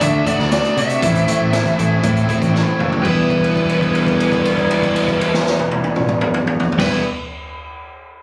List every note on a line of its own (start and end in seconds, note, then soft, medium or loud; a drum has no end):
0.01 0.21 D3 medium
0.01 0.25 D3 medium
0.01 0.26 A3 medium
0.01 0.26 D4 medium
0.01 0.27 F#4 medium
0.01 0.27 E5 medium
0.01 kick loud
0.01 closed hi-hat loud
0.26 0.51 D3 loud
0.26 0.52 A3 loud
0.26 0.52 D4 loud
0.26 0.52 F#4 loud
0.26 0.51 D5 medium
0.26 kick medium
0.26 closed hi-hat medium
0.39 0.59 D2 loud
0.39 snare soft
0.52 0.76 D3 medium
0.52 0.77 A3 medium
0.52 0.78 D4 medium
0.52 0.78 F#4 medium
0.52 0.78 D5 medium
0.52 snare loud
0.52 closed hi-hat loud
0.64 closed hi-hat soft
0.77 0.96 C3 medium
0.77 1.01 D3 medium
0.77 1.01 A3 medium
0.77 1.02 D4 loud
0.77 1.02 F#4 medium
0.77 2.51 E5 medium
0.77 closed hi-hat medium
0.89 closed hi-hat soft
1.02 1.22 A1 loud
1.02 1.27 A2 medium
1.02 1.27 E3 medium
1.02 1.27 A3 medium
1.02 1.28 C4 medium
1.02 1.28 E4 medium
1.02 kick loud
1.02 closed hi-hat loud
1.15 closed hi-hat soft
1.28 1.52 A2 medium
1.28 1.52 E3 medium
1.28 1.52 A3 medium
1.28 1.53 C4 medium
1.28 1.53 E4 medium
1.28 closed hi-hat medium
1.40 1.60 A1 medium
1.53 1.76 A2 medium
1.53 1.77 E3 medium
1.53 1.77 A3 medium
1.53 1.77 C4 medium
1.53 1.78 E4 medium
1.53 snare loud
1.53 closed hi-hat medium
1.66 kick medium
1.66 closed hi-hat soft
1.77 1.98 A1 medium
1.77 2.01 A2 medium
1.77 2.02 E3 loud
1.77 2.02 A3 loud
1.77 2.03 C4 loud
1.77 2.03 E4 loud
1.77 closed hi-hat medium
2.02 2.27 A2 medium
2.02 2.23 A2 medium
2.02 2.28 E3 medium
2.02 2.28 A3 medium
2.02 2.28 C4 medium
2.02 2.29 E4 loud
2.02 kick loud
2.02 closed hi-hat medium
2.16 closed hi-hat soft
2.28 2.53 A2 loud
2.28 2.54 E3 medium
2.28 2.54 A3 loud
2.28 2.54 C4 loud
2.28 2.55 E4 loud
2.28 kick medium
2.28 closed hi-hat medium
2.42 2.61 A1 medium
2.42 kick medium
2.42 closed hi-hat soft
2.54 2.78 A2 medium
2.54 2.78 E3 medium
2.54 2.78 A3 medium
2.54 2.79 C4 medium
2.54 2.79 E4 medium
2.54 snare medium
2.67 high tom medium
2.79 2.99 F#1 medium
2.79 3.03 A2 medium
2.79 3.03 E3 medium
2.79 3.03 A3 medium
2.79 3.04 C4 medium
2.79 3.04 E4 medium
2.79 mid tom medium
2.92 floor tom medium
3.03 6.70 E1 loud
3.03 6.73 E2 medium
3.03 6.74 B2 medium
3.03 6.74 E3 loud
3.03 6.75 G3 medium
3.03 6.75 B3 medium
3.03 6.69 B4 medium
3.03 kick loud
3.03 crash medium
3.08 6.75 E4 loud
3.30 kick medium
3.30 crash soft
3.44 crash soft
3.56 kick medium
3.56 crash soft
3.69 crash soft
3.81 kick medium
3.81 crash soft
3.95 crash soft
4.07 kick medium
4.07 crash medium
4.20 crash medium
4.32 kick medium
4.32 crash medium
4.45 crash soft
4.57 kick medium
4.57 crash soft
4.71 crash medium
4.82 kick medium
4.82 crash medium
4.96 crash medium
5.08 kick medium
5.08 crash medium
5.21 crash medium
5.34 snare loud
5.47 snare medium
5.59 high tom medium
5.71 high tom loud
5.84 high tom medium
5.96 mid tom medium
6.09 mid tom loud
6.21 mid tom loud
6.34 mid tom loud
6.47 mid tom loud
6.60 floor tom loud
6.72 floor tom loud
6.78 7.01 E1 medium
6.78 7.02 E2 medium
6.78 7.02 B2 loud
6.78 7.03 E3 loud
6.78 7.03 G3 loud
6.78 7.03 B3 loud
6.78 7.01 B4 medium
6.78 kick loud
6.78 snare loud
6.78 crash loud
6.82 7.04 E4 loud